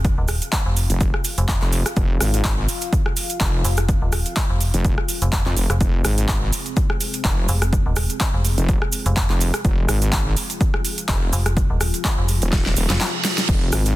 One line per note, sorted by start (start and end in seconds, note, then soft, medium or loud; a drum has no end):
0.00 0.16 F1 medium
0.00 13.96 C4 medium
0.00 13.96 F4 medium
0.00 5.79 F5 medium
0.04 kick loud
0.04 closed hi-hat medium
0.04 cabasa soft
0.18 0.40 D#1 loud
0.28 cross-stick medium
0.28 open hi-hat loud
0.28 cabasa medium
0.42 closed hi-hat medium
0.42 cabasa medium
0.52 kick loud
0.52 clap loud
0.52 closed hi-hat medium
0.52 cabasa soft
0.66 0.88 F1 loud
0.77 open hi-hat loud
0.77 cabasa medium
0.90 1.12 F1 loud
0.90 closed hi-hat medium
0.90 cabasa medium
1.00 kick loud
1.00 closed hi-hat soft
1.00 cabasa soft
1.14 cross-stick medium
1.24 open hi-hat loud
1.24 cabasa loud
1.38 1.60 F1 loud
1.38 closed hi-hat medium
1.38 cabasa medium
1.48 kick loud
1.48 clap loud
1.48 closed hi-hat medium
1.48 cabasa soft
1.62 1.84 F1 loud
1.62 clap soft
1.72 open hi-hat loud
1.72 cabasa loud
1.86 cross-stick medium
1.86 closed hi-hat medium
1.86 cabasa medium
1.96 2.19 F1 loud
1.96 kick loud
1.96 closed hi-hat medium
1.96 cabasa soft
2.21 2.67 G#1 medium
2.21 cross-stick medium
2.21 open hi-hat loud
2.21 cabasa loud
2.34 closed hi-hat medium
2.34 cabasa medium
2.44 kick loud
2.44 clap loud
2.44 closed hi-hat medium
2.44 cabasa soft
2.68 open hi-hat loud
2.68 cabasa loud
2.81 closed hi-hat medium
2.81 cabasa medium
2.93 kick loud
2.93 closed hi-hat soft
2.93 cabasa soft
3.06 cross-stick medium
3.17 open hi-hat loud
3.17 cabasa loud
3.30 closed hi-hat medium
3.30 cabasa medium
3.40 3.63 F1 loud
3.40 kick loud
3.40 clap loud
3.40 closed hi-hat medium
3.40 cabasa soft
3.65 4.00 F1 medium
3.65 open hi-hat loud
3.65 cabasa loud
3.77 cross-stick medium
3.77 closed hi-hat medium
3.77 cabasa medium
3.89 kick loud
3.89 closed hi-hat medium
3.89 cabasa soft
4.02 4.24 D#1 medium
4.12 cross-stick medium
4.12 open hi-hat loud
4.12 cabasa loud
4.26 closed hi-hat medium
4.26 cabasa medium
4.36 kick loud
4.36 clap loud
4.36 closed hi-hat medium
4.36 cabasa soft
4.50 4.72 F1 loud
4.61 open hi-hat loud
4.61 cabasa medium
4.74 4.96 F1 loud
4.74 closed hi-hat medium
4.74 cabasa medium
4.85 kick loud
4.85 closed hi-hat medium
4.85 cabasa soft
4.98 cross-stick medium
5.09 open hi-hat loud
5.09 cabasa loud
5.22 5.44 F1 loud
5.22 closed hi-hat medium
5.22 cabasa medium
5.32 kick loud
5.32 clap loud
5.32 closed hi-hat soft
5.32 cabasa soft
5.46 5.55 F2 loud
5.46 clap soft
5.57 5.68 F1 loud
5.57 open hi-hat medium
5.57 cabasa medium
5.70 5.79 F1 loud
5.70 cross-stick medium
5.70 closed hi-hat medium
5.70 cabasa medium
5.81 6.03 F1 medium
5.81 13.47 G#4 medium
5.81 kick loud
5.81 closed hi-hat medium
5.81 cabasa soft
6.05 6.51 G#1 loud
6.05 cross-stick medium
6.05 open hi-hat loud
6.05 cabasa medium
6.18 closed hi-hat medium
6.18 cabasa medium
6.28 kick loud
6.28 clap loud
6.28 closed hi-hat medium
6.28 cabasa soft
6.53 open hi-hat medium
6.53 cabasa medium
6.66 closed hi-hat medium
6.66 cabasa soft
6.76 kick loud
6.76 closed hi-hat soft
6.76 cabasa soft
6.90 cross-stick medium
7.01 open hi-hat loud
7.01 cabasa loud
7.13 closed hi-hat medium
7.13 cabasa medium
7.25 7.47 F1 loud
7.25 kick loud
7.25 clap loud
7.25 closed hi-hat medium
7.25 cabasa soft
7.49 7.84 F1 loud
7.49 open hi-hat medium
7.49 cabasa loud
7.62 cross-stick medium
7.62 closed hi-hat medium
7.62 cabasa medium
7.73 kick loud
7.73 closed hi-hat medium
7.73 cabasa soft
7.86 8.08 D#1 loud
7.96 cross-stick medium
7.96 open hi-hat loud
7.96 cabasa medium
8.10 closed hi-hat medium
8.10 cabasa soft
8.20 kick loud
8.20 clap loud
8.20 closed hi-hat medium
8.20 cabasa soft
8.34 8.56 F1 loud
8.45 open hi-hat medium
8.45 cabasa medium
8.58 8.80 F1 loud
8.58 closed hi-hat medium
8.58 cabasa soft
8.69 kick loud
8.69 closed hi-hat medium
8.69 cabasa soft
8.82 cross-stick medium
8.92 open hi-hat loud
8.92 cabasa medium
9.06 9.28 F1 loud
9.06 closed hi-hat medium
9.06 cabasa medium
9.17 kick loud
9.17 clap loud
9.17 closed hi-hat soft
9.17 cabasa soft
9.30 9.52 F1 loud
9.30 clap soft
9.41 open hi-hat medium
9.41 cabasa loud
9.54 cross-stick medium
9.54 closed hi-hat medium
9.54 cabasa soft
9.65 9.87 F1 loud
9.65 kick loud
9.65 closed hi-hat medium
9.65 cabasa soft
9.89 10.35 G#1 medium
9.89 cross-stick loud
9.89 open hi-hat loud
9.89 cabasa medium
10.02 closed hi-hat medium
10.02 cabasa medium
10.12 kick loud
10.12 clap loud
10.12 closed hi-hat medium
10.12 cabasa soft
10.37 open hi-hat medium
10.37 cabasa medium
10.50 closed hi-hat medium
10.50 cabasa soft
10.61 kick loud
10.61 closed hi-hat medium
10.61 cabasa soft
10.74 cross-stick medium
10.85 open hi-hat loud
10.85 cabasa medium
10.98 closed hi-hat medium
10.98 cabasa medium
11.09 11.31 F1 loud
11.09 kick loud
11.09 clap loud
11.09 closed hi-hat medium
11.09 cabasa soft
11.33 11.68 F1 medium
11.33 open hi-hat medium
11.33 cabasa medium
11.46 cross-stick medium
11.46 closed hi-hat medium
11.46 cabasa soft
11.57 kick loud
11.57 closed hi-hat medium
11.57 cabasa soft
11.70 11.92 D#1 loud
11.81 cross-stick medium
11.81 open hi-hat loud
11.81 cabasa medium
11.94 closed hi-hat medium
11.94 cabasa soft
12.04 kick loud
12.04 clap loud
12.04 closed hi-hat medium
12.04 cabasa soft
12.18 12.40 F1 loud
12.28 open hi-hat medium
12.28 cabasa medium
12.42 12.75 D#1 loud
12.42 closed hi-hat medium
12.42 cabasa soft
12.53 kick loud
12.53 snare medium
12.53 closed hi-hat medium
12.53 reverse cymbal medium
12.53 cabasa soft
12.66 snare medium
12.76 12.88 D#1 loud
12.76 open hi-hat loud
12.76 cabasa medium
12.89 12.99 F1 loud
12.89 snare medium
12.89 closed hi-hat medium
12.89 cabasa medium
13.01 snare medium
13.01 clap loud
13.01 closed hi-hat medium
13.01 cabasa soft
13.24 snare loud
13.24 open hi-hat medium
13.24 cabasa medium
13.38 snare medium
13.38 closed hi-hat medium
13.38 cabasa soft
13.49 13.71 F1 medium
13.49 13.96 F5 medium
13.49 kick loud
13.49 closed hi-hat medium
13.49 crash medium
13.49 cabasa soft
13.72 13.96 G#1 loud
13.72 cross-stick medium
13.72 open hi-hat loud
13.72 cabasa medium
13.86 closed hi-hat medium
13.86 cabasa medium